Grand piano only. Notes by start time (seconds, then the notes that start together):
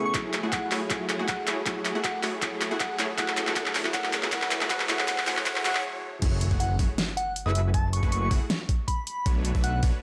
Already playing: C#3 A3 B3 G#4
0.13 F#3 A3 E4 G#4
0.41 F#3 A3 E4
0.45 G#4
0.89 F#3 A3 E4 G#4
1.17 F#3 A3 E4 G#4
1.65 F#3 A3 E4 G#4
1.93 F#3 A3 E4
1.97 G#4
2.41 F#3 A3 E4 G#4
2.69 F#3 A3 E4
2.73 G#4
3.17 F#3 A3 E4 G#4
3.45 F#3 A3 E4
3.49 G#4
3.55 F#3 A3 E4 G#4
3.83 F#3 A3 E4
3.87 G#4
3.93 F#3 A3 E4 G#4
4.21 F#3 A3 E4 G#4
4.31 F#3 A3 E4 G#4
4.59 F#3 A3 E4
4.63 G#4
4.69 F#3 A3 E4 G#4
4.88 F#3 A3 E4 G#4
5.07 F#3 A3 E4 G#4
5.26 F#3 A3 E4 G#4
5.45 F#3 A3 E4 G#4
5.64 F#3 A3 E4 G#4